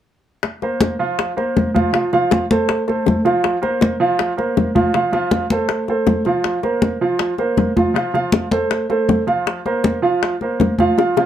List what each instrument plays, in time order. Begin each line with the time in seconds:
0.43 high bongo, high conga
0.62 upright piano A#3 A#4 C5, high bongo, high conga
0.81 high bongo, high conga
0.99 upright piano F3 F4 F5
1.19 high bongo, high conga
1.37 upright piano A#3 A#4 C5, high bongo, high conga
1.57 high bongo, low bongo, high conga
1.74 upright piano F3 F4 F5, high bongo, high conga
1.93 upright piano F3 F4 F5, high bongo, high conga
2.13 upright piano F3 F4 F5, high bongo, high conga
2.31 high bongo, high conga
2.50 upright piano A3 A4 C5, high conga
2.69 high bongo, high conga
2.88 upright piano A3 A4 C5, high bongo, high conga
3.06 high bongo, low bongo, high conga
3.25 upright piano F3 F4 F5, high bongo, high conga
3.44 high bongo, high conga
3.62 upright piano A#3 A#4 C5, high bongo, high conga
3.81 high bongo, high conga
4.00 upright piano F3 F4 F5
4.19 high bongo, high conga
4.37 upright piano A#3 A#4 C5, high bongo, high conga
4.57 high bongo, low bongo, high conga
4.75 upright piano F3 F4 F5, high bongo, high conga
4.94 upright piano F3 F4 F5, high bongo, high conga
5.13 upright piano F3 F4 F5, high bongo, high conga
5.31 high bongo, high conga
5.50 upright piano A3 A4 C5, high conga
5.69 high bongo, high conga
5.88 upright piano A3 A4 C5, high bongo, high conga
6.07 high bongo, low bongo, high conga
6.25 upright piano F3 F4 F5, high bongo, high conga
6.44 high bongo, high conga
6.63 upright piano A#3 A#4 C5, high bongo, high conga
6.82 high bongo, high conga
7.01 upright piano F3 F4 F5
7.19 high bongo, high conga
7.38 upright piano A#3 A#4 C5, high bongo, high conga
7.57 high bongo, low bongo, high conga
7.76 upright piano F3 F4 F5, high bongo, high conga
7.94 upright piano F3 F4 F5, high bongo, high conga
8.14 upright piano F3 F4 F5, high bongo, high conga
8.32 high bongo, high conga
8.51 upright piano A3 A4 C5, high conga
8.71 high bongo, high conga
8.90 upright piano A3 A4 C5, high bongo, high conga
9.09 high bongo, low bongo, high conga
9.27 upright piano F3 F4 F5, high bongo, high conga
9.46 high bongo, high conga
9.66 upright piano A#3 A#4 C5, high bongo, high conga
9.84 high bongo, high conga
10.02 upright piano F3 F4 F5
10.23 high bongo, high conga
10.41 upright piano A#3 A#4 C5, high bongo, high conga
10.60 high bongo, low bongo, high conga
10.79 upright piano F3 F4 F5, high bongo, high conga
10.98 upright piano F3 F4 F5, high bongo, high conga
11.17 upright piano F3 F4 F5, high bongo, high conga